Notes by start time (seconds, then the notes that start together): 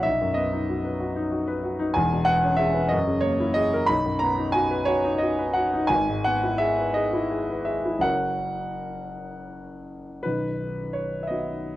0.03 B1 E5
0.21 F#2
0.34 B3 D#5
0.53 D#4
0.69 F#4
0.85 B4
1.00 F#4
1.16 D#4
1.32 F#4
1.47 B4
1.63 F#4
1.79 D#4
1.94 E1 E2 G#5
2.12 B2
2.25 B3 F#5
2.44 C#4
2.57 G#4 E5
2.74 B4
2.89 F#2 D#5
3.08 C#3
3.21 A#3 C#5
3.40 E4
3.54 G#4 D#5
3.73 A#4
3.86 B1 B5
4.05 F#2
4.19 B3 A#5
4.38 D#4
4.52 F#4 G#5
4.71 B4
4.85 F#4 C#5
5.05 D#4
5.18 F#4 D#5
5.38 B4
5.53 F#4 F#5
5.73 D#4
5.87 G#1 G#5
6.09 G#2
6.24 B3 F#5
6.43 E4
6.58 G#4 E5
6.79 B4
6.94 G#4 D#5
7.13 E4
7.31 G#4
7.50 B4
7.65 G#4 E5
7.86 E4
7.99 F#1 C#4 F#4 A#4 F#5
10.23 B0 B1 B4
10.93 C#5
11.23 E5
11.28 B3 D#4 F#4 D#5